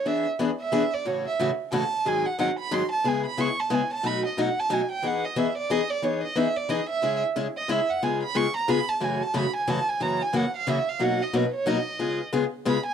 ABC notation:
X:1
M:3/4
L:1/16
Q:"Swing" 1/4=181
K:E
V:1 name="Violin"
e2 z4 e4 =d2 | c2 e2 z4 a4 | g2 f2 f2 b2 ^b2 a2 | g2 b2 c'2 a2 g2 a2 |
b2 d2 f2 a2 g2 =g2 | f2 d2 e2 =d2 ^d2 =d2 | c2 d2 e2 =d2 ^d2 e2- | [K:C#m] e2 z4 d2 e2 f2 |
g2 b2 c'2 ^a2 b2 =a2 | g2 a2 b2 g2 a2 g2 | ^a2 g2 f2 ^e2 =e2 ^e2 | f2 d2 B2 c2 d4- |
d2 z6 b2 g2 |]
V:2 name="Steel-string acoustic guitar"
[E,B,=DG]2 z2 [E,B,DG] z3 [E,B,DG] z3 | [A,,C,E,A,CF]2 z2 [A,,C,E,A,CF] z3 [A,,C,E,A,CF] z3 | [G,,D,F,^B,DG]2 z2 [G,,D,F,B,DG] z3 [G,,D,F,B,DG] z3 | [C,G,B,EG]2 z2 [C,G,B,EG] z3 [C,G,B,EG] z3 |
[B,,F,A,DF]2 z2 [B,,F,A,DF] z3 [B,,F,A,DF] z3 | [E,B,DG]2 z2 [E,B,DG] z3 [E,B,DG] z3 | [E,B,DG]2 z2 [E,B,DG] z3 [E,B,DG] z3 | [K:C#m] [C,G,CEG]2 z2 [C,G,CEG] z3 [C,G,CEG] z3 |
[C,G,B,^EG]2 z2 [C,G,B,EG] z3 [C,G,B,EG] z3 | [F,,C,E,A,CF]2 z2 [F,,C,E,A,CF] z3 [F,,C,E,A,CF] z3 | [F,,C,E,^A,CF]2 z2 [F,,C,E,A,CF] z3 [F,,C,E,A,CF] z3 | [B,,F,^A,DF]2 z2 [B,,F,A,DF] z3 [B,,F,A,DF] z3 |
[C,G,B,^EG]2 z2 [C,G,B,EG] z3 [C,G,B,EG] z3 |]